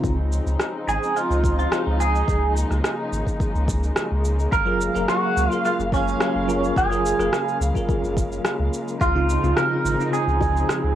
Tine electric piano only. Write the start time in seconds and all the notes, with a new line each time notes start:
Already playing: C#3 C4 D#4 F4
4.65 F#3 F4 G#4 A#4
4.94 F#3 G#4 A#4 F5
5.49 F#3 F4 G#4 A#4
6.47 F#3 F4 G#4 A#4
6.90 F#3 F4 G#4 A#4
7.18 F#3 F4 G#4 A#4
7.74 F#3 F4 G#4 A#4
9.15 C#3 C4 D#4 F4
9.43 C#3 C4 D#4 F4
9.98 C#3 C4 D#4 F4